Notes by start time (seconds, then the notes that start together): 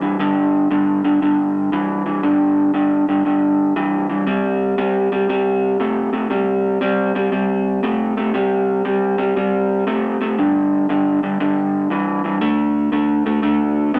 0.01 G2 E3
0.19 G2 D3
0.71 G2 D3
1.05 G2 D3
1.22 G2 D3
1.72 G2 E3
2.06 G2 E3
2.23 G2 D3
2.74 G2 D3
3.09 G2 D3
3.25 G2 D3
3.76 G2 E3
4.10 G2 E3
4.27 C3 G3
4.78 C3 G3
5.12 C3 G3
5.29 C3 G3
5.80 C3 A3
6.13 C3 A3
6.30 C3 G3
6.81 C3 G3
7.15 C3 G3
7.32 C3 G3
7.83 C3 A3
8.17 C3 A3
8.34 C3 G3
8.85 C3 G3
9.18 C3 G3
9.36 C3 G3
9.87 C3 A3
10.21 C3 A3
10.38 G2 D3
10.89 G2 D3
11.23 G2 D3
11.40 G2 D3
11.90 G2 E3
12.24 G2 E3
12.41 D3 A3
12.92 D3 A3
13.26 D3 A3
13.42 D3 A3
13.94 D3 B3